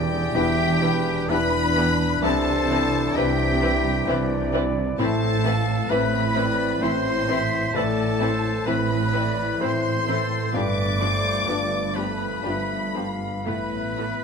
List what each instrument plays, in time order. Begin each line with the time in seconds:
Already playing: double bass section E1, cello section E2, grand piano E2, timpani E2, french horn section E3 D4, clarinet G4, oboe G4, flute D5, violin section G5
0.34 double bass section E1, cello section E2, viola section E3 B3, grand piano D4 E4 B4, violin section D4 G4, flute E5
0.81 viola section E3 B3, violin section D4 G4, flute B4
1.29 double bass section E1, cello section E2, viola section E3 B3, grand piano D4 E4 B4, violin section D4 G4 B5, clarinet B4, flute B4, oboe B4
1.77 viola section E3 B3, violin section D4 G4
2.22 grand piano C2, double bass section C2, cello section C3, viola section E3 C4, violin section C4 E4 A5, clarinet A4, oboe A4, flute C5
2.70 viola section E3 C4, violin section C4 E4
3.16 double bass section C2, cello section C3, viola section E3 B4, violin section C4 E4 G5, grand piano C4 E4 B4, clarinet G4, oboe G4, flute E5
3.62 viola section E3 B4, violin section C4 E4
4.08 double bass section C2, cello section C3, viola section E3 B4, violin section C4 E4, grand piano C4 E4 B4, flute D5
4.53 viola section E3 B4, violin section C4 E4
4.99 double bass section A1, grand piano A2, cello section A2, french horn section E3 C4, viola section E3 C4, violin section C4 E4 A5, clarinet A4, oboe A4, flute C5
5.44 viola section E3 B4, violin section C4 E4, flute F5
5.89 double bass section A1, cello section A2, viola section E3 B4, grand piano C4 E4 B4, violin section C4 E4 B5, clarinet B4, oboe B4, flute E5
6.36 viola section E3 B4, violin section C4 E4, flute D5
6.81 double bass section A1, cello section A2, viola section E3 C4, violin section C4 E4 C6, grand piano C4 E4 C5, clarinet C5, oboe C5, flute C5
7.28 viola section E3 C4, violin section C4 E4, flute E5
7.74 double bass section A1, grand piano A2, cello section A2, french horn section E3 A3, viola section E3 B4, violin section C4 E4 A5, clarinet A4, oboe A4, flute D5
8.19 viola section E3 C4, violin section C4 E4, flute C5
8.67 double bass section A1, cello section A2, viola section E3 B4, violin section C4 E4 B5, grand piano C4 E4 B4, clarinet B4, oboe B4, flute B4
9.13 viola section E3 B4, violin section C4 E4, flute D5
9.60 double bass section A1, cello section A2, viola section E3 C4, grand piano C4 E4 C5, violin section C4 E4 C6, clarinet C5, oboe C5, flute C5
10.08 viola section E3 C4, violin section C4 E4, flute A4
10.53 double bass section G1, grand piano G2, cello section G2, viola section F3 B3, french horn section F3, violin section D4 G4 D6, flute B4, clarinet D5, oboe D5
11.00 viola section F3 D4, violin section D4 G4, flute C5
11.47 double bass section G1, cello section G2, viola section F3 B3, grand piano D4 F4 B4, violin section D4 G4, flute D5
11.94 viola section F3 B3, violin section D4 G4 B5, oboe B4, clarinet B4
12.44 double bass section G1, cello section G2, viola section F3 B3, violin section D4 G4, grand piano D4 F4 B4, flute E5
12.94 viola section F3 B3, violin section D4 G4, flute F5
13.46 double bass section A1, cello section A2, grand piano A2, viola section E3 A3, french horn section E3 B3, violin section B3 E4 B5, oboe B4, clarinet B4, flute E5
13.98 viola section E3 A3, violin section B3 E4